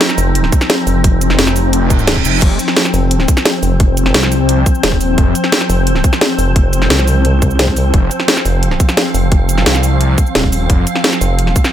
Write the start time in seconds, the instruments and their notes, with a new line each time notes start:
Already playing: synth drone F3 C4 D#4
0.01 snare, closed hi-hat
0.09 snare, shaker
0.18 wobble bass F1, open hi-hat, shaker
0.35 closed hi-hat
0.44 snare
0.52 kick, closed hi-hat, shaker
0.61 snare, shaker
0.70 snare, closed hi-hat
0.87 wobble bass F1, open hi-hat, shaker
1.04 kick, closed hi-hat
1.21 closed hi-hat, shaker
1.30 snare
1.39 detuned saw bass F1, snare, closed hi-hat
1.47 snare, shaker
1.56 open hi-hat, shaker
1.73 closed hi-hat, reverse cymbal
1.90 kick, closed hi-hat, shaker
1.99 shaker
2.07 snare, closed hi-hat
2.16 kick
2.25 detuned saw bass F1, open hi-hat, shaker
2.42 detuned saw bass F1, synth drone C5, kick, closed hi-hat, crash
2.59 closed hi-hat, shaker
2.68 snare
2.77 snare, closed hi-hat
2.85 snare, shaker
2.94 wobble bass F1, open hi-hat, shaker
3.11 closed hi-hat
3.20 snare
3.28 kick, closed hi-hat, shaker
3.37 snare, shaker
3.45 snare, closed hi-hat
3.63 wobble bass F1, open hi-hat, shaker
3.80 kick, closed hi-hat
3.97 closed hi-hat, shaker
4.06 snare
4.14 detuned saw bass C2, snare, closed hi-hat
4.23 snare, shaker
4.32 open hi-hat, shaker
4.49 closed hi-hat
4.66 kick, closed hi-hat, shaker
4.75 shaker
4.83 detuned saw bass D#1, snare, closed hi-hat
4.92 kick
5.01 open hi-hat, shaker
5.18 detuned saw bass F1, kick, closed hi-hat
5.35 closed hi-hat, shaker
5.44 snare
5.52 snare, closed hi-hat
5.61 snare, shaker
5.70 wobble bass F1, open hi-hat, shaker
5.87 closed hi-hat
5.95 snare
6.04 kick, closed hi-hat, shaker
6.13 snare, shaker
6.21 snare, closed hi-hat
6.39 wobble bass F1, open hi-hat, shaker
6.56 kick, closed hi-hat
6.73 closed hi-hat, shaker
6.82 snare
6.90 wobble bass C2, snare, closed hi-hat
6.99 snare, shaker
7.08 open hi-hat, shaker
7.25 closed hi-hat
7.42 kick, closed hi-hat, shaker
7.51 shaker
7.59 snare, closed hi-hat
7.68 kick
7.77 open hi-hat, shaker
7.94 detuned saw bass F1, synth drone F5, kick, closed hi-hat
8.11 closed hi-hat, shaker
8.20 snare
8.28 snare, closed hi-hat
8.37 snare, shaker
8.45 wobble bass F1, open hi-hat, shaker
8.63 closed hi-hat
8.71 snare
8.80 kick, closed hi-hat, shaker
8.89 snare, shaker
8.97 snare, closed hi-hat
9.14 wobble bass F1, open hi-hat, shaker
9.32 kick, closed hi-hat
9.49 closed hi-hat, shaker
9.58 snare
9.66 detuned saw bass C2, snare, closed hi-hat
9.75 snare, shaker
9.83 open hi-hat, shaker
10.01 closed hi-hat
10.18 kick, closed hi-hat, shaker
10.27 shaker
10.35 detuned saw bass D#1, snare, closed hi-hat
10.44 kick
10.52 open hi-hat, shaker
10.70 detuned saw bass F1, kick, closed hi-hat
10.87 closed hi-hat, shaker
10.95 snare
11.04 snare, closed hi-hat
11.13 snare, shaker
11.21 wobble bass F1, open hi-hat, shaker
11.39 closed hi-hat
11.47 snare
11.56 kick, closed hi-hat, shaker
11.64 snare, shaker